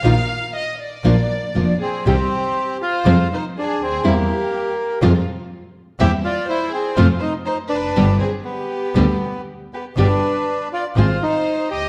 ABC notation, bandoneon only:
X:1
M:4/4
L:1/8
Q:1/4=121
K:Bbmix
V:1 name="Bandoneon"
z6 z C | [K:Gphr] C3 F2 E D C | B,4 z4 | G F =E C F _E E D- |
D C =B,4 z B, | D3 F F E2 G |]